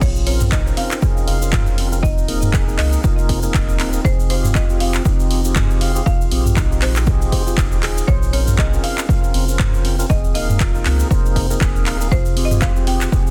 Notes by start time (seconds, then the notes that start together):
0.01 A#1 F4 C#5, kick, crash, shaker
0.16 shaker
0.27 C4 C#4 F4 A#4 C#5, open hi-hat
0.41 mid tom, shaker
0.52 D#4 D#5, kick, clap, shaker
0.66 C4 C#4 F4 A#4, shaker
0.77 C4 F5, open hi-hat
0.91 clap, shaker
1.02 C4 C#4 F4 G#4 A#4, kick, shaker
1.17 shaker
1.28 F1 F5, open hi-hat
1.42 C4 C#4 F4 A#4, shaker
1.52 F4, kick, clap, mid tom, shaker
1.66 shaker
1.78 C4, open hi-hat
1.92 C4 C#4 F4 A#4, shaker
2.03 D#1 D#4 D#5, kick, shaker
2.18 shaker
2.28 A#3 C4 D#4 G#4 A#4, open hi-hat
2.42 mid tom, shaker
2.54 G#4, kick, clap, shaker
2.68 A#3 D#4 G#4 A#4, shaker
2.78 C#2 D#5 F5, clap, open hi-hat
2.93 shaker
3.04 F1 A#3 D#4 F4 G#4 A#4, kick, shaker
3.18 shaker
3.29 C4, kick, open hi-hat
3.43 A#3 D#4 G#4 A#4, shaker
3.54 D#1 D#4, kick, clap, shaker
3.69 shaker
3.80 C4, clap, open hi-hat
3.93 A#3 D#4 G#4 A#4, shaker
4.05 F1 G#4 C5, kick, shaker
4.20 shaker
4.30 C4 F4 G4 G#4 C5 F5, open hi-hat
4.44 mid tom, shaker
4.55 F4 D#5, kick, clap, shaker
4.69 C4 F4 G4 G#4, shaker
4.80 C4 F5, open hi-hat
4.94 clap, shaker
5.05 F1 C4 F4 G4 G#4, kick, shaker
5.20 shaker
5.31 C4, open hi-hat
5.45 C4 F4 G4 G#4, shaker
5.56 G#4, kick, clap, mid tom, shaker
5.70 shaker
5.81 F5, open hi-hat
5.95 C4 F4 G4 G#4, shaker
6.06 F1 F4 F5, kick, shaker
6.21 shaker
6.31 A#1 C4 F4 G4 G#4, open hi-hat
6.46 mid tom, shaker
6.57 D#4, kick, clap, shaker
6.71 C4 F4 G4 G#4, shaker
6.82 C4 C5, clap, open hi-hat
6.96 clap, shaker
7.06 C4 F4 G4 G#4, kick, shaker
7.22 shaker
7.32 C5, kick, open hi-hat
7.47 C4 F4 G4 G#4, shaker
7.57 D#1 D#4, kick, clap, shaker
7.72 C4 F4 G4 G#4, shaker
7.83 G#4, clap, open hi-hat
7.98 shaker
8.07 A#1 C5 C#5, kick, shaker
8.22 shaker
8.33 C4 C#4 F4 A#4 C#5, open hi-hat
8.47 mid tom, shaker
8.58 G#4 D#5, kick, clap, shaker
8.73 C4 C#4 F4 A#4, shaker
8.84 F5, open hi-hat
8.98 clap, shaker
9.09 C4 C#4 F4 A#4, kick, shaker
9.24 shaker
9.34 F1 C4, open hi-hat
9.48 C4 C#4 F4 A#4, shaker
9.59 C5, kick, clap, mid tom, shaker
9.74 shaker
9.84 C4, open hi-hat
9.99 C4 C#4 F4 A#4, shaker
10.10 D#1 G#4 D#5, kick, shaker
10.24 shaker
10.35 A#3 D#4 G#4 A#4 D#5 F5, open hi-hat
10.49 mid tom, shaker
10.60 F4, kick, clap, shaker
10.75 A#3 D#4 G#4 A#4, shaker
10.85 C#2 C4, clap, open hi-hat
11.00 shaker
11.11 F1 A#3 D#4 G#4 A#4 C5, kick, shaker
11.26 shaker
11.36 C4, kick, open hi-hat
11.50 A#3 D#4 G#4 A#4, shaker
11.61 D#1 G#4, kick, clap, shaker
11.76 shaker
11.86 F5, clap, open hi-hat
12.01 A#3 D#4 G#4 A#4, shaker
12.11 F1 F4 C5, kick, shaker
12.25 shaker
12.37 C4 F4 G4 G#4, open hi-hat
12.45 D#5
12.51 mid tom, shaker
12.61 C5 F5, kick, clap, shaker
12.76 C4 F4 G4 G#4, shaker
12.87 C4 G5, open hi-hat
13.01 clap, shaker
13.12 F1 C4 F4 G4 G#4, kick, shaker
13.27 shaker